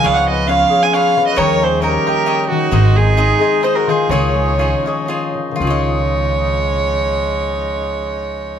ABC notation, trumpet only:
X:1
M:3/4
L:1/16
Q:"Swing" 1/4=128
K:Db
V:1 name="Trumpet"
d/2 e/2 d _c2 d3 f d3 c | B2 A2 =G6 E2- | E2 E6 A G F2 | A8 z4 |
A,12- | A,12 |]